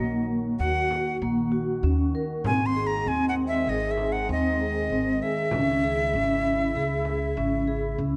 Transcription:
Already playing: D#3 A#3 F#4 D#5
0.00 A#1 A#3
0.59 D#2 F#4 F#5
0.91 frame drum
1.22 A#1 A#3
1.52 F#4
1.83 D#2 C#4
2.15 A#4
2.44 G#1 D#3 G#3 C4 G#5, frame drum
2.66 C6
2.75 G#4, frame drum
2.87 A#5
3.06 D#2 C4 G#5
3.29 F#5
3.48 E5
3.67 G#1 G#4 D#5
3.91 E5
3.98 frame drum
4.12 F#5
4.28 D#2 C4 D#5, frame drum
4.60 G#4
4.90 G#1 C4
5.21 G#4 E5, frame drum
5.51 C#2 C#3 G#3 C#4 E4, frame drum
5.84 G#4
6.13 G#1 C#4
6.43 frame drum
6.75 C#2 G#4
7.05 frame drum
7.36 G#1 C#4, frame drum
7.68 G#4
7.98 C#2 C#4

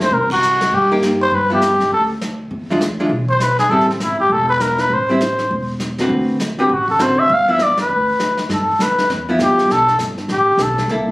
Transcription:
Already playing: E4 A4
0.00 C#2 C5, snare
0.11 C2 A#4, brush sweep
0.30 F#4, kick, ride
0.43 hi-hat pedal
0.61 snare
0.72 G2 G4, brush sweep
0.92 A#3 D#4 G4
1.02 snare, hi-hat pedal
1.22 C5
1.31 G2 B4, brush sweep
1.50 F3 B3 E4 G4
1.61 snare, hi-hat pedal
1.79 F2, snare
1.91 D2 A4, brush sweep
2.21 snare, hi-hat pedal
2.51 E2, brush sweep
2.70 E3 G#3 D4 F4
2.80 D2, snare, hi-hat pedal
3.00 E3 G#3 D4 F4
3.09 B1, brush sweep
3.30 C5
3.40 B4, snare, hi-hat pedal
3.59 G#4, snare
3.69 A1 G3 C4 E4 A4, brush sweep
3.80 snare
3.89 C4, snare
4.00 G#1 E4, snare, hi-hat pedal
4.20 G4
4.29 E1 A4, brush sweep
4.49 B4
4.60 A#4, snare, hi-hat pedal
4.78 B4, snare
4.90 A1 C5, brush sweep
5.09 G3 C4 E4
5.20 snare, hi-hat pedal
5.39 snare
5.50 E1, brush sweep
5.80 snare, hi-hat pedal
5.98 D3 C4 F#4 B4, snare
6.09 D2, brush sweep
6.40 snare, hi-hat pedal
6.58 D3 C4 F#4 G4 B4, muted upright bass stroke
6.69 A1, brush sweep
6.74 F#4
6.88 A4, kick
6.99 D3 C4 F#4 B4 C5, snare, hi-hat pedal
7.18 E5, muted upright bass stroke
7.29 G1 F5, brush sweep
7.48 F3 B3 E4 E5
7.59 D5, snare, hi-hat pedal
7.77 B4, snare
7.89 D2, brush sweep
8.20 snare, hi-hat pedal
8.37 snare
8.49 G2 A4, brush sweep, snare
8.68 muted upright bass stroke
8.79 F2 B4, snare, hi-hat pedal
8.98 muted upright bass stroke, snare
9.10 E2, brush sweep, snare
9.29 F3 B3 E4
9.39 G1, snare, hi-hat pedal
9.43 G4
9.59 snare
9.69 B1 A4, brush sweep, snare
9.88 snare
9.99 G1, snare, hi-hat pedal
10.18 snare
10.28 A1 G4, brush sweep, snare
10.57 B1, snare, hi-hat pedal
10.62 A4
10.78 snare
10.88 C2 A#3 E4 A4, brush sweep, snare

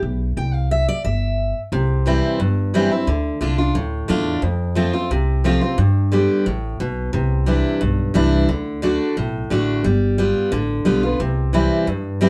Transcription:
0.03 B1
0.37 C2 G5
0.54 F5
0.71 E5
0.88 D5
1.04 G1 E5
1.72 C2 C3
2.06 E3 G3 C4 E4
2.39 G1 G2
2.74 E3 G3 C4 E4
2.91 C4 E4
3.07 D2 D3
3.41 C2 D3 A3 D4 F4
3.58 D4 F4
3.75 D2 A2
4.08 E2 D3 A3 D4 F4
4.42 F2
4.75 F3 A3 C4 F4
4.93 C4 F4
5.11 C2 C3
5.44 F3 A3 C4 F4
5.61 C4 F4
5.78 G2
6.12 D3 G3 B3 G4
6.46 A1 A2
6.80 B1 B2
7.13 C2 C3
7.46 E3 G3 D4 E4
7.81 B1 G2
8.14 C2 E3 G3 D4 E4
8.49 D2 D3
8.82 D3 A3 D4 F#4
9.17 B1 A2
9.50 A1 D3 A3 D4 F#4
9.84 G1 G3
10.18 G3 B3 F4
10.52 A1 D3
10.85 B1 G3 B3 F4
11.03 B3 F4
11.20 C2 C3
11.53 E3 G3 C4 E4
11.87 G2
12.21 E3 G3 C4 E4

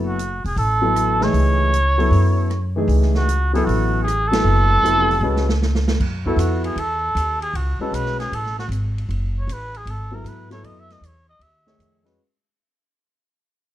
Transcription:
Already playing: F#1 F#3 B3 E4 A4
0.07 F#4
0.19 closed hi-hat
0.44 E1 G#4, open hi-hat
0.56 A1 A4, open hi-hat
0.82 F#3 B3 E4 A4
0.96 cross-stick, closed hi-hat
1.21 E3 A3 D#4 G#4 C#5, snare
1.33 C#2, open hi-hat
1.73 closed hi-hat
1.98 F#3 B3 E4 A4, open hi-hat
2.11 F#2, open hi-hat
2.50 cross-stick, closed hi-hat
2.76 E3 A3 D#4 G#4
2.88 C#2, open hi-hat
3.02 snare
3.15 F#4, snare
3.29 closed hi-hat
3.54 F#3 B3 E4 G#4 A4, open hi-hat
3.65 A1 F#4, open hi-hat
4.03 G#4
4.08 cross-stick, closed hi-hat
4.28 F#3 A4
4.32 B3 E4 A4, snare, ride
4.44 F#1
4.83 F1 F#3 B3 E4 A4, closed hi-hat
5.11 open hi-hat
5.21 C#2 G#3 C#4 F#4 B4
5.36 snare
5.49 snare
5.62 snare
5.75 snare
5.88 snare
6.00 F#2, kick, crash
6.26 B3 E4 F#4 A4, kick
6.36 F2 F#4, hi-hat pedal, ride
6.64 G#4, ride
6.76 E2 A4, ride
7.15 D#2, hi-hat pedal, ride
7.42 G#4, ride
7.53 C#2 F#4, ride
7.79 G#3 C#4 F#4 A4 B4, muted upright bass stroke
7.92 B1 B4, hi-hat pedal, ride
8.06 snare
8.20 G#4, snare, ride
8.32 A1 A4, ride
8.46 snare
8.59 F#4, snare
8.69 G#1, hi-hat pedal, ride
8.98 ride
9.09 F#1, ride
9.39 C#5
9.47 A1, hi-hat pedal, ride
9.53 B4
9.74 G#4, ride
9.85 G#1, ride
9.90 A4
10.12 F#3 B3 E4 A4 A#4
10.24 G#2 B4, hi-hat pedal, ride
10.51 F#3 B3 E4 A4 C#5, snare, ride
10.63 F#2 D#5, ride
10.80 E5
10.90 D#5, snare, ride
11.01 E2, hi-hat pedal, ride
11.07 C#5
11.29 D#5
11.39 D#2 E5, ride
11.66 D#3 A3 G#4 C#5, snare
11.79 F2, hi-hat pedal, ride
12.04 G#3 C#4 F#4 B4, snare, ride

